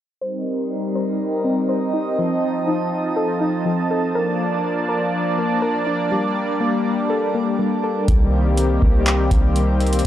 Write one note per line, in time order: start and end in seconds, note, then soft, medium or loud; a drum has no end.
0.21 2.16 G3 medium
0.21 4.11 C4 medium
0.21 4.11 D#4 medium
0.21 2.16 A#4 medium
0.21 0.94 C5 medium
0.21 4.11 D#5 medium
0.95 1.68 C5 medium
1.44 2.18 C4 medium
1.69 2.18 C5 medium
1.93 2.18 D#4 medium
2.18 4.13 F3 medium
2.18 3.64 F3 medium
2.18 8.04 A5 medium
2.67 3.40 D#4 medium
3.16 3.90 A4 medium
3.41 4.15 D#4 medium
3.65 4.15 F3 medium
3.91 4.15 A4 medium
4.15 6.09 F3 medium
4.15 8.04 A#3 medium
4.15 8.04 D4 medium
4.15 4.87 A#4 loud
4.15 8.04 D5 medium
4.89 5.61 A#4 medium
5.38 6.12 A#3 medium
5.62 6.11 A#4 medium
5.87 6.11 D4 medium
6.12 8.06 G3 medium
6.12 7.58 G3 loud
6.61 7.33 A#3 medium
7.10 7.83 A4 medium
7.35 8.08 A#3 medium
7.59 8.08 G3 medium
7.84 8.08 A4 medium
8.08 8.79 C2 loud
8.08 10.03 D#3 medium
8.08 10.03 G3 medium
8.08 10.03 A#3 medium
8.08 10.07 C4 medium
8.08 10.03 G4 medium
8.08 kick loud
8.08 closed hi-hat medium
8.57 closed hi-hat medium
8.82 9.29 C2 loud
8.82 kick medium
9.07 clap loud
9.07 closed hi-hat medium
9.31 10.02 C2 loud
9.31 kick medium
9.31 closed hi-hat medium
9.56 closed hi-hat medium
9.80 closed hi-hat soft
9.87 closed hi-hat medium
9.93 closed hi-hat medium
9.99 closed hi-hat medium